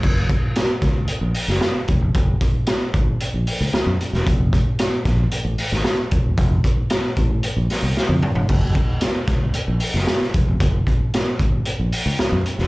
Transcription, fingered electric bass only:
0.03 0.34 F#1 loud
0.82 1.03 C#2 medium
1.09 muted fingered electric bass stroke soft
1.21 1.32 A#1 medium
1.48 1.59 F#1 medium
1.89 1.99 F1 medium
2.01 2.12 F1 loud
2.15 2.35 F#1 loud
2.54 muted fingered electric bass stroke soft
2.94 3.14 G#1 medium
3.34 3.44 A#1 medium
3.61 3.71 C#2 medium
3.86 3.97 F#2 loud
4.13 4.23 E1 loud
4.26 4.57 F1 loud
5.05 5.26 A#1 medium
5.32 muted fingered electric bass stroke soft
5.45 5.55 A1 medium
5.72 5.82 G#1 medium
6.12 6.22 F1 loud
6.24 6.35 E1 medium
6.38 6.58 F1 loud
6.77 muted fingered electric bass stroke medium
7.17 7.38 A1 medium
7.57 7.67 A#1 medium
7.82 7.93 C2 medium
8.09 8.19 F2 loud
8.35 8.46 F1 medium
8.49 8.80 F#1 loud
9.28 9.48 C#2 medium
9.54 muted fingered electric bass stroke soft
9.68 9.78 A#1 medium
9.94 10.04 F#1 loud
10.34 10.44 F1 medium
10.47 10.58 F1 medium
10.60 10.81 F#1 loud
11.00 muted fingered electric bass stroke soft
11.39 11.60 G#1 medium
11.79 11.90 A#1 medium
12.06 12.16 C#2 medium
12.32 12.42 F#2 loud
12.59 12.67 E1 medium

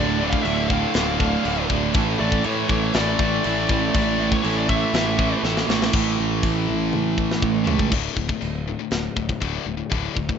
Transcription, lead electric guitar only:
0.00 0.33 D5 loud
0.30 0.45 F5 loud
0.42 0.69 E5 loud
0.68 1.65 F5 medium
2.20 2.45 D5 loud
2.45 2.83 C#5 medium
2.84 2.94 C#5 medium
2.95 3.68 D5 loud
3.69 4.27 D5 loud
4.33 4.57 C#5 medium
4.57 4.68 D5 medium
4.70 5.39 E5 loud

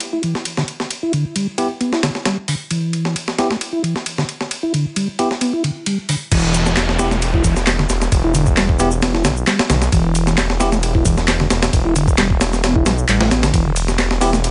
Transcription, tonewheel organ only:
0.13 0.22 E4 medium
0.23 0.34 E3 medium
0.58 0.63 D3 medium
1.03 1.12 E4 medium
1.13 1.25 D3 medium
1.36 1.47 G3 medium
1.81 1.92 B3 loud
1.93 2.02 E4 medium
2.03 2.10 D3 medium
2.26 2.37 G3 medium
2.48 2.55 D3 medium
2.71 3.15 E3 medium
3.50 3.56 A3 medium
3.73 3.82 E4 medium
3.83 3.94 E3 medium
4.18 4.24 D3 medium
4.63 4.73 E4 medium
4.74 4.85 D3 medium
4.96 5.08 G3 medium
5.41 5.53 B3 medium
5.53 5.63 E4 medium
5.64 5.70 D3 medium
5.87 5.98 G3 medium
6.09 6.16 D3 medium
6.32 6.76 E3 medium
7.11 7.17 A3 medium
7.34 7.43 E4 medium
7.44 7.55 E3 medium
7.79 7.85 D3 medium
8.24 8.34 E4 medium
8.34 8.46 D3 loud
8.57 8.69 G3 medium
9.02 9.14 B3 loud
9.14 9.24 E4 medium
9.24 9.31 D3 medium
9.47 9.59 G3 medium
9.69 9.76 D3 medium
9.92 10.37 E3 medium
10.72 10.78 A3 medium
10.95 11.04 E4 medium
11.05 11.16 E3 medium
11.40 11.46 D3 medium
11.85 11.95 E4 medium
11.96 12.07 D3 loud
12.18 12.30 G3 medium
12.63 12.75 B3 loud
12.76 12.85 E4 medium
12.86 12.93 G3 medium
13.09 13.19 G3 medium
13.21 13.30 A3 medium
13.31 13.42 B3 loud
13.43 13.53 D3 loud
13.54 13.65 E3 medium
13.66 13.71 D3 medium
14.33 14.39 A3 medium

